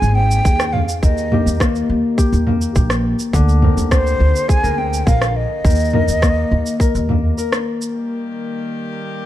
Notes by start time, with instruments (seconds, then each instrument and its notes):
Already playing: harp G#2 D#3 A#3 C4 D#4 G#4, flute G#5
0.02 upright bass G#1, cabasa
0.15 harp C4, flute G5
0.31 cabasa
0.45 upright bass D#2, harp G#4, kick, cabasa
0.60 cross-stick, cabasa
0.73 flute F5, mid tom
0.89 cabasa
1.02 upright bass D#2, harp D#3, flute D#5, kick, cabasa
1.18 cabasa
1.32 harp A#3 D#4 G4, mid tom
1.46 upright bass D#2, cabasa
1.60 harp A#3, kick, cross-stick, cabasa
1.76 cabasa
1.90 upright bass D#2
2.18 harp G4, kick, cabasa
2.33 upright bass D#2, cabasa
2.47 harp A#3, mid tom
2.62 cabasa
2.76 upright bass A#1, harp G4, kick, cabasa
2.90 cross-stick, cabasa
3.19 cabasa
3.33 upright bass D2, harp D3, kick, cabasa
3.49 cabasa
3.62 harp C4 A#4, mid tom
3.77 upright bass D2, cabasa
3.91 harp C4, flute C5, kick, cross-stick, cabasa
4.07 cabasa
4.20 upright bass D2
4.36 cabasa
4.49 harp G#4, flute G#5, kick, cabasa
4.63 upright bass D2, harp A#4, cabasa
4.78 harp C4, flute G5
4.93 cabasa
5.07 upright bass A#1, harp A#4, flute F5, kick, cabasa
5.22 cross-stick, cabasa
5.36 flute D#5
5.65 upright bass D#2, harp D#3, kick, cabasa
5.70 cabasa
5.75 cabasa
5.80 cabasa
5.85 cabasa
5.90 harp A#3, mid tom, cabasa
5.94 harp D#4 A#4
6.08 upright bass D#2, cabasa
6.22 harp A#3, kick, cross-stick, cabasa
6.51 upright bass D#2
6.66 cabasa
6.80 harp A#4, kick, cabasa
6.95 upright bass D#2, cabasa
7.09 harp A#3, mid tom
7.38 harp A#4, cabasa
7.52 cross-stick, cabasa
7.82 cabasa
7.94 string quartet D#3 G3 A#3 G4